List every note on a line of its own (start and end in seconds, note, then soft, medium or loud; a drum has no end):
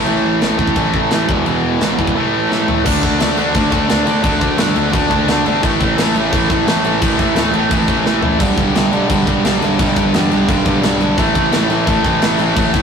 0.00 1.27 A2 medium
0.00 1.28 E3 medium
0.00 1.29 A3 loud
0.05 0.24 A1 medium
0.05 0.40 A2 medium
0.05 0.41 E3 loud
0.05 0.41 A3 loud
0.05 crash medium
0.24 0.41 A1 medium
0.41 0.58 A1 loud
0.41 0.57 A2 medium
0.41 0.59 E3 loud
0.41 0.58 A3 medium
0.41 snare loud
0.41 crash medium
0.58 0.75 A1 medium
0.58 0.75 A2 medium
0.58 0.76 E3 medium
0.58 0.76 A3 loud
0.58 kick medium
0.67 kick medium
0.76 0.93 A1 medium
0.76 1.10 A2 loud
0.76 1.10 E3 loud
0.76 1.11 A3 loud
0.76 kick loud
0.76 crash medium
0.94 1.11 A1 medium
0.94 kick medium
1.11 1.28 A1 medium
1.11 1.28 A2 medium
1.11 1.28 E3 medium
1.11 1.28 A3 loud
1.11 snare loud
1.11 crash medium
1.29 1.45 E1 medium
1.29 1.45 E2 loud
1.29 1.46 B2 loud
1.29 1.47 E3 loud
1.29 kick loud
1.46 1.62 E1 loud
1.46 1.80 E2 loud
1.46 1.81 B2 medium
1.46 1.81 E3 loud
1.46 crash medium
1.63 1.80 E1 medium
1.80 1.97 A1 medium
1.80 1.97 E2 medium
1.80 1.97 B2 medium
1.80 1.98 E3 loud
1.80 snare loud
1.80 crash medium
1.98 2.15 E1 medium
1.98 2.15 E2 medium
1.98 2.15 B2 medium
1.98 2.15 E3 loud
1.98 kick medium
2.07 kick medium
2.15 2.50 A2 loud
2.15 2.51 E3 loud
2.15 2.51 A3 loud
2.51 2.68 A2 medium
2.51 2.68 E3 medium
2.51 2.69 A3 medium
2.51 snare medium
2.68 2.85 A2 medium
2.68 2.85 E3 medium
2.68 2.85 A3 medium
2.68 floor tom medium
2.86 3.01 D2 medium
2.86 3.03 D3 medium
2.86 3.03 A3 loud
2.86 3.04 D4 loud
2.86 kick loud
2.86 crash loud
2.86 crash medium
3.03 3.18 D2 medium
3.03 3.19 D3 medium
3.03 3.20 A3 loud
3.03 3.21 D4 medium
3.03 kick medium
3.03 crash medium
3.20 3.36 D2 loud
3.20 3.37 D3 medium
3.20 3.38 A3 medium
3.20 3.38 D4 loud
3.20 snare loud
3.20 crash medium
3.37 3.53 D2 medium
3.37 3.53 D3 loud
3.37 3.55 A3 loud
3.37 3.54 D4 loud
3.37 crash medium
3.54 3.70 D2 medium
3.54 3.70 D3 medium
3.54 3.72 A3 medium
3.54 3.72 D4 medium
3.54 kick loud
3.54 crash medium
3.71 3.88 D2 medium
3.71 3.87 D3 medium
3.71 3.89 A3 loud
3.71 3.89 D4 loud
3.71 kick medium
3.71 crash medium
3.89 4.05 D2 loud
3.89 4.05 D3 medium
3.89 4.06 A3 medium
3.89 4.06 D4 loud
3.89 snare loud
3.89 crash medium
4.06 4.22 D2 medium
4.06 4.21 D3 loud
4.06 4.22 A3 medium
4.06 4.22 D4 loud
4.06 crash medium
4.22 4.39 D2 medium
4.22 4.39 D3 loud
4.22 4.41 A3 loud
4.22 4.40 D4 loud
4.22 kick loud
4.22 crash medium
4.40 4.57 D2 medium
4.40 4.56 D3 medium
4.40 4.58 A3 medium
4.40 4.58 D4 loud
4.40 kick medium
4.40 crash medium
4.58 4.74 G2 medium
4.58 4.74 D3 loud
4.58 4.76 A3 loud
4.58 4.75 D4 loud
4.58 snare loud
4.58 crash medium
4.75 4.91 D2 loud
4.75 4.92 D3 loud
4.75 4.93 A3 loud
4.75 4.93 D4 loud
4.75 crash medium
4.93 5.09 D2 loud
4.93 5.08 D3 medium
4.93 5.10 A3 medium
4.93 5.09 D4 medium
4.93 kick loud
4.93 crash medium
5.09 5.26 D2 loud
5.09 5.26 D3 loud
5.09 5.28 A3 loud
5.09 5.27 D4 loud
5.09 kick medium
5.09 crash medium
5.28 5.44 D2 loud
5.28 5.44 D3 medium
5.28 5.45 A3 medium
5.28 5.45 D4 loud
5.28 snare loud
5.28 crash medium
5.45 5.61 G1 medium
5.45 5.62 D3 medium
5.45 5.63 A3 medium
5.45 5.62 D4 loud
5.45 crash medium
5.62 5.78 A1 medium
5.62 5.79 A2 loud
5.62 5.80 E3 loud
5.62 5.81 A3 loud
5.62 kick loud
5.62 crash medium
5.80 5.96 A1 medium
5.80 5.97 A2 medium
5.80 5.97 E3 loud
5.80 5.98 A3 medium
5.80 kick medium
5.80 crash medium
5.97 6.13 A1 medium
5.97 6.15 A2 medium
5.97 6.15 E3 medium
5.97 6.16 A3 loud
5.97 snare loud
5.97 crash medium
6.15 6.30 A1 medium
6.15 6.31 A2 loud
6.15 6.32 E3 loud
6.15 6.32 A3 loud
6.15 crash medium
6.32 6.48 A1 loud
6.32 6.48 A2 medium
6.32 6.49 E3 medium
6.32 6.49 A3 medium
6.32 kick loud
6.32 crash medium
6.49 6.65 A1 medium
6.49 6.66 A2 loud
6.49 6.66 E3 loud
6.49 6.67 A3 loud
6.49 kick medium
6.49 crash medium
6.67 6.82 A1 medium
6.67 6.83 A2 medium
6.67 6.84 E3 medium
6.67 6.84 A3 loud
6.67 snare loud
6.67 crash medium
6.84 6.99 A1 loud
6.84 7.01 A2 medium
6.84 7.01 E3 loud
6.84 7.02 A3 loud
6.84 crash medium
7.02 7.17 A1 medium
7.02 7.17 A2 loud
7.02 7.18 E3 loud
7.02 7.19 A3 loud
7.02 kick loud
7.02 crash medium
7.19 7.34 A1 medium
7.19 7.36 A2 medium
7.19 7.36 E3 medium
7.19 7.36 A3 medium
7.19 kick medium
7.19 crash medium
7.35 7.51 D2 medium
7.35 7.53 A2 medium
7.35 7.53 E3 loud
7.35 7.54 A3 loud
7.35 snare loud
7.35 crash medium
7.53 7.69 A1 medium
7.53 7.70 A2 medium
7.53 7.71 E3 loud
7.53 7.71 A3 loud
7.53 crash medium
7.71 7.86 A1 medium
7.71 7.88 A2 medium
7.71 7.88 E3 loud
7.71 7.89 A3 medium
7.71 kick loud
7.71 crash medium
7.88 8.03 A1 medium
7.88 8.05 A2 loud
7.88 8.05 E3 loud
7.88 8.06 A3 loud
7.88 kick medium
7.88 crash medium
8.06 8.21 A1 medium
8.06 8.22 A2 medium
8.06 8.23 E3 medium
8.06 8.23 A3 loud
8.06 snare medium
8.23 8.40 A1 medium
8.23 8.39 A2 medium
8.23 8.40 E3 loud
8.23 8.40 A3 medium
8.23 floor tom loud
8.40 8.55 B1 medium
8.40 8.56 G2 loud
8.40 8.57 D3 loud
8.40 8.58 G3 loud
8.40 kick loud
8.40 crash loud
8.57 8.73 B1 medium
8.57 8.74 G2 medium
8.57 8.75 D3 medium
8.57 8.76 G3 loud
8.57 kick medium
8.57 crash medium
8.75 8.90 B1 medium
8.75 8.91 G2 medium
8.75 8.92 D3 medium
8.75 8.94 G3 loud
8.75 snare loud
8.75 crash medium
8.91 9.07 B1 medium
8.91 9.09 G2 loud
8.91 9.10 D3 loud
8.91 9.10 G3 loud
8.91 crash medium
9.10 9.25 B1 medium
9.10 9.26 G2 medium
9.10 9.27 D3 medium
9.10 9.28 G3 medium
9.10 kick loud
9.10 crash medium
9.27 9.42 B1 medium
9.27 9.44 G2 loud
9.27 9.44 D3 loud
9.27 9.45 G3 loud
9.27 kick medium
9.27 crash medium
9.44 9.59 B1 medium
9.44 9.61 G2 medium
9.44 9.62 D3 medium
9.44 9.62 G3 medium
9.44 snare loud
9.44 crash medium
9.62 9.77 B1 medium
9.62 9.77 G2 medium
9.62 9.78 D3 loud
9.62 9.79 G3 loud
9.62 crash medium
9.78 9.94 B1 loud
9.78 9.94 G2 loud
9.78 9.95 D3 loud
9.78 9.95 G3 loud
9.78 kick loud
9.78 crash medium
9.95 10.12 B1 medium
9.95 10.12 G2 medium
9.95 10.13 D3 loud
9.95 10.13 G3 medium
9.95 kick medium
9.95 crash medium
10.13 10.29 E2 medium
10.13 10.29 G2 loud
10.13 10.30 D3 medium
10.13 10.31 G3 loud
10.13 snare loud
10.13 crash medium
10.31 10.47 B1 medium
10.31 10.47 G2 medium
10.31 10.48 D3 loud
10.31 10.48 G3 loud
10.31 crash medium
10.48 10.64 B1 medium
10.48 10.65 G2 medium
10.48 10.65 D3 medium
10.48 10.66 G3 medium
10.48 kick loud
10.48 crash medium
10.66 10.81 B1 medium
10.66 10.81 G2 medium
10.66 10.82 D3 loud
10.66 10.82 G3 loud
10.66 kick medium
10.66 crash medium
10.82 10.98 B1 medium
10.82 10.99 G2 medium
10.82 11.00 D3 loud
10.82 11.00 G3 medium
10.82 snare loud
10.82 crash medium
11.00 11.15 B1 medium
11.00 11.17 G2 medium
11.00 11.17 D3 loud
11.00 11.17 G3 loud
11.00 crash medium
11.18 11.33 A1 loud
11.18 11.33 A2 loud
11.18 11.34 E3 loud
11.18 11.35 A3 loud
11.18 kick loud
11.18 crash medium
11.34 11.50 A1 medium
11.34 11.51 A2 medium
11.34 11.52 E3 medium
11.34 11.52 A3 loud
11.34 kick loud
11.34 crash medium
11.52 11.67 A1 loud
11.52 11.69 A2 medium
11.52 11.70 E3 loud
11.52 11.70 A3 loud
11.52 snare loud
11.52 crash medium
11.69 11.85 A1 loud
11.69 11.87 A2 loud
11.69 11.87 E3 loud
11.69 11.88 A3 loud
11.69 crash medium
11.87 12.02 A1 medium
11.87 12.04 A2 medium
11.87 12.05 E3 loud
11.87 12.06 A3 loud
11.87 kick loud
11.87 crash medium
12.04 12.20 A1 loud
12.04 12.21 A2 loud
12.04 12.22 E3 loud
12.04 12.22 A3 loud
12.04 kick medium
12.04 crash medium
12.21 12.37 A1 medium
12.21 12.38 A2 medium
12.21 12.39 E3 medium
12.21 12.39 A3 medium
12.21 snare loud
12.21 crash medium
12.38 12.53 A1 loud
12.38 12.55 A2 medium
12.38 12.56 E3 loud
12.38 12.56 A3 loud
12.38 crash medium
12.56 12.72 A1 medium
12.56 12.72 A2 loud
12.56 12.73 E3 loud
12.56 12.73 A3 loud
12.56 kick loud
12.56 crash medium
12.73 12.82 A1 medium
12.73 12.82 A2 medium
12.73 12.82 E3 medium
12.73 12.82 A3 loud
12.73 kick medium
12.73 crash medium